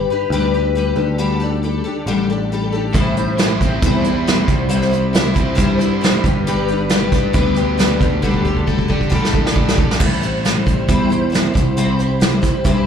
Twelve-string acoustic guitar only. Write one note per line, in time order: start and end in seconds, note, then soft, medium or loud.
0.10 0.31 D4 soft
0.10 0.32 G4 medium
0.10 0.31 B4 medium
0.32 0.53 G3 medium
0.32 0.53 D4 medium
0.32 0.54 G4 medium
0.32 0.53 B4 medium
0.54 0.74 D4 soft
0.54 0.76 G4 medium
0.54 0.75 B4 medium
0.75 0.97 G3 medium
0.75 0.97 D4 medium
0.75 0.95 G4 medium
0.75 0.95 B4 medium
0.96 1.18 D4 soft
0.96 1.18 G4 soft
0.96 1.18 A4 medium
1.18 1.40 D3 medium
1.18 1.40 G3 medium
1.18 1.41 D4 medium
1.18 1.40 G4 medium
1.18 1.39 A4 medium
1.40 1.62 D4 soft
1.40 1.63 G4 soft
1.40 1.62 A4 medium
1.63 1.85 G3 medium
1.63 1.85 D4 medium
1.63 1.84 G4 medium
1.63 1.83 A4 soft
1.84 2.07 D4 soft
1.84 2.07 G4 soft
1.84 2.06 A4 medium
2.07 2.29 D3 medium
2.07 2.29 G3 medium
2.07 2.29 D4 medium
2.07 2.29 G4 medium
2.07 2.29 A4 medium
2.30 2.51 D4 soft
2.30 2.51 G4 soft
2.30 2.51 A4 medium
2.52 2.73 G3 medium
2.52 2.74 D4 medium
2.52 2.73 G4 medium
2.52 2.71 A4 medium
2.72 2.95 D4 soft
2.72 2.94 G4 soft
2.72 2.94 A4 soft
2.93 3.16 A2 medium
2.93 3.16 E3 medium
2.93 3.17 G3 medium
2.93 3.17 C4 medium
2.93 3.17 E4 medium
2.93 3.16 C5 medium
3.17 3.37 G3 soft
3.17 3.39 C4 soft
3.17 3.38 E4 medium
3.17 3.39 C5 medium
3.38 3.60 G3 medium
3.38 3.61 C4 medium
3.38 3.61 E4 medium
3.38 3.60 C5 medium
3.61 3.84 G3 soft
3.61 3.84 C4 soft
3.61 3.84 E4 medium
3.61 3.83 C5 medium
3.85 4.06 A2 medium
3.85 4.06 E3 medium
3.85 4.06 G3 medium
3.85 4.06 C4 medium
3.85 4.05 E4 medium
3.85 4.04 C5 medium
4.05 4.26 G3 soft
4.05 4.28 C4 soft
4.05 4.27 E4 soft
4.05 4.27 C5 soft
4.27 4.49 G3 medium
4.27 4.48 C4 medium
4.27 4.47 E4 medium
4.27 4.47 C5 medium
4.48 4.68 G3 soft
4.48 4.69 C4 soft
4.48 4.69 E4 soft
4.48 4.69 C5 soft
4.69 4.92 C3 medium
4.69 4.92 E3 medium
4.69 4.92 G3 medium
4.69 4.91 C4 medium
4.69 4.90 E4 medium
4.69 4.89 C5 medium
4.90 5.12 G3 soft
4.90 5.13 C4 soft
4.90 5.13 E4 medium
4.90 5.14 C5 medium
5.13 5.36 G3 medium
5.13 5.35 C4 medium
5.13 5.34 E4 medium
5.13 5.33 C5 medium
5.34 5.55 G3 soft
5.34 5.55 C4 soft
5.34 5.56 E4 soft
5.34 5.56 C5 medium
5.55 5.79 C3 medium
5.55 5.79 E3 medium
5.55 5.80 G3 medium
5.55 5.80 C4 medium
5.55 5.79 E4 medium
5.55 5.78 C5 medium
5.79 6.00 G3 soft
5.79 6.01 C4 medium
5.79 6.03 E4 medium
5.79 6.02 C5 medium
6.01 6.24 G3 medium
6.01 6.25 C4 medium
6.01 6.24 E4 medium
6.01 6.23 C5 medium
6.24 6.46 D4 soft
6.24 6.47 G4 soft
6.24 6.47 B4 soft
6.47 6.69 G3 medium
6.47 6.69 D4 medium
6.47 6.70 G4 medium
6.47 6.68 B4 medium
6.69 6.92 D4 soft
6.69 6.92 G4 soft
6.69 6.92 B4 medium
6.92 7.14 G3 medium
6.92 7.13 D4 medium
6.92 7.14 G4 medium
6.92 7.12 B4 medium
7.13 7.33 D4 soft
7.13 7.34 G4 soft
7.13 7.34 B4 soft
7.33 7.57 G3 medium
7.33 7.57 D4 medium
7.33 7.56 G4 medium
7.33 7.53 B4 medium
7.54 7.76 D4 soft
7.54 7.77 G4 soft
7.54 7.78 B4 medium
7.78 8.01 G3 medium
7.78 8.01 D4 medium
7.78 8.00 G4 medium
7.78 7.99 B4 medium
7.99 8.23 D4 soft
7.99 8.23 G4 soft
7.99 8.23 A4 soft
8.22 8.45 D3 medium
8.22 8.46 G3 medium
8.22 8.46 D4 medium
8.22 8.46 G4 medium
8.22 8.44 A4 medium
8.45 8.66 D4 soft
8.45 8.68 G4 medium
8.45 8.68 A4 medium
8.67 8.90 G3 medium
8.67 8.89 D4 soft
8.67 8.89 G4 medium
8.67 8.87 A4 medium
8.88 9.10 D4 soft
8.88 9.11 G4 soft
8.88 9.11 A4 medium
9.09 9.33 D3 medium
9.09 9.33 G3 medium
9.09 9.34 D4 medium
9.09 9.32 G4 medium
9.09 9.31 A4 medium
9.32 9.53 D4 soft
9.32 9.53 G4 soft
9.32 9.54 A4 medium
9.53 9.77 G3 medium
9.53 9.77 D4 medium
9.53 9.77 G4 medium
9.53 9.75 A4 medium
9.76 10.00 D4 soft
9.76 10.00 G4 soft
9.76 9.99 A4 soft
10.00 10.22 A2 medium
10.00 10.22 E3 medium
10.00 10.22 G3 medium
10.00 10.22 C4 medium
10.00 10.22 E4 medium
10.00 10.20 C5 medium
10.21 10.44 G3 soft
10.21 10.45 C4 soft
10.21 10.45 E4 medium
10.21 10.44 C5 medium
10.45 10.67 G3 medium
10.45 10.67 C4 soft
10.45 10.66 E4 medium
10.45 10.65 C5 medium
10.66 10.87 G3 soft
10.66 10.88 C4 soft
10.66 10.89 E4 medium
10.66 10.88 C5 medium
10.88 11.10 A2 medium
10.88 11.11 E3 medium
10.88 11.10 G3 medium
10.88 11.10 C4 medium
10.88 11.09 E4 medium
10.88 11.08 C5 medium
11.09 11.29 G3 soft
11.09 11.31 C4 soft
11.09 11.31 E4 medium
11.09 11.31 C5 medium
11.30 11.53 G3 medium
11.30 11.54 C4 medium
11.30 11.53 E4 medium
11.30 11.52 C5 medium
11.54 11.76 G3 soft
11.54 11.76 C4 soft
11.54 11.76 E4 soft
11.54 11.76 C5 soft
11.77 11.99 C3 medium
11.77 11.99 E3 medium
11.77 11.99 G3 medium
11.77 11.99 C4 medium
11.77 11.99 E4 medium
11.77 11.98 C5 medium
11.99 12.19 G3 soft
11.99 12.20 C4 soft
11.99 12.21 E4 soft
11.99 12.21 C5 medium
12.20 12.42 G3 medium
12.20 12.42 C4 soft
12.20 12.41 E4 medium
12.20 12.40 C5 medium
12.42 12.64 G3 soft
12.42 12.64 C4 soft
12.42 12.64 E4 soft
12.42 12.64 C5 medium
12.64 12.86 C3 medium
12.64 12.87 E3 medium
12.64 12.87 G3 medium
12.64 12.86 C4 medium
12.64 12.85 E4 medium
12.64 12.84 C5 medium